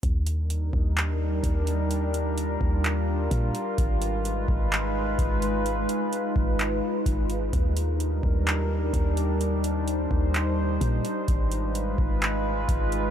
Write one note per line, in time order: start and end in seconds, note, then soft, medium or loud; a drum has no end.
0.03 0.71 D#2 loud
0.03 3.74 G3 medium
0.03 3.74 D4 medium
0.03 1.89 D#4 medium
0.03 3.74 A#4 medium
0.03 kick loud
0.03 closed hi-hat medium
0.27 closed hi-hat medium
0.50 closed hi-hat medium
0.73 1.41 D#2 loud
0.73 kick loud
0.97 clap loud
0.97 closed hi-hat medium
1.43 2.57 D#2 medium
1.43 kick medium
1.43 closed hi-hat medium
1.67 closed hi-hat medium
1.91 7.49 F4 medium
1.91 closed hi-hat medium
2.14 closed hi-hat medium
2.38 closed hi-hat medium
2.61 3.28 D#2 loud
2.61 kick medium
2.84 clap loud
2.84 closed hi-hat medium
3.31 3.54 A#2 loud
3.31 kick medium
3.31 closed hi-hat medium
3.55 closed hi-hat medium
3.78 4.46 G#1 loud
3.78 7.49 G#3 medium
3.78 13.11 D#4 medium
3.78 7.49 B4 medium
3.78 kick loud
3.78 closed hi-hat medium
4.02 closed hi-hat medium
4.25 closed hi-hat medium
4.48 5.16 G#1 loud
4.48 kick medium
4.72 clap loud
4.72 closed hi-hat medium
5.19 5.86 G#1 loud
5.19 kick medium
5.19 closed hi-hat medium
5.42 closed hi-hat medium
5.66 closed hi-hat medium
5.89 closed hi-hat medium
6.13 closed hi-hat medium
6.36 6.81 G#1 loud
6.36 kick medium
6.59 clap loud
6.59 closed hi-hat medium
7.06 7.51 G#1 medium
7.06 kick medium
7.06 closed hi-hat medium
7.30 closed hi-hat medium
7.53 8.21 D#2 loud
7.53 11.24 G3 medium
7.53 11.24 D4 medium
7.53 9.39 A#4 medium
7.53 kick loud
7.53 closed hi-hat medium
7.77 closed hi-hat medium
8.00 closed hi-hat medium
8.23 8.91 D#2 loud
8.23 kick loud
8.47 clap loud
8.47 closed hi-hat medium
8.94 10.07 D#2 loud
8.94 kick medium
8.94 closed hi-hat medium
9.17 closed hi-hat medium
9.41 11.26 C5 medium
9.41 closed hi-hat medium
9.64 closed hi-hat medium
9.88 closed hi-hat medium
10.11 10.78 D#2 loud
10.11 kick medium
10.34 clap loud
10.34 closed hi-hat medium
10.81 11.04 A#2 loud
10.81 kick medium
10.81 closed hi-hat medium
11.05 closed hi-hat medium
11.28 11.96 G#1 loud
11.28 13.11 G#3 medium
11.28 13.11 F4 medium
11.28 13.11 B4 medium
11.28 kick loud
11.28 closed hi-hat medium
11.52 closed hi-hat medium
11.75 closed hi-hat medium
11.98 12.66 G#1 loud
11.98 kick medium
12.22 clap loud
12.22 closed hi-hat medium
12.69 13.11 G#1 loud
12.69 kick medium
12.69 closed hi-hat medium
12.92 closed hi-hat medium